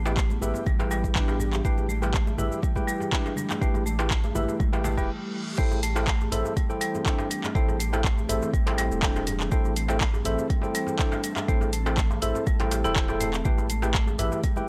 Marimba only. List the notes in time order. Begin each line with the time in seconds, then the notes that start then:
0.17 A3
0.42 E4
0.66 G3
0.91 G3
1.15 D4
1.40 G3
1.65 A3
1.89 A3
2.14 A3
2.39 E4
2.63 G3
2.88 G3
3.12 D4
3.37 G3
3.62 A3
3.86 A3
4.11 A3
4.35 E4
4.60 G3
4.84 A3
4.97 G3
5.58 A3
5.83 A3
6.08 A3
6.32 E4
6.57 G3
6.81 G3
7.06 D4
7.30 G3
7.55 A3
7.80 A3
8.04 A3
8.29 E4
8.53 G3
8.78 G3
9.03 D4
9.27 G3
9.52 A3
9.76 A3
10.01 A3
10.26 E4
10.50 G3
10.75 G3
10.99 D4
11.24 G3
11.48 A3
11.73 A3
11.97 A3
12.22 E4
12.46 G3
12.71 G4
12.84 E4
12.96 E3
13.20 A3
13.45 A3
13.70 A3
13.94 A3
14.19 E4
14.43 G3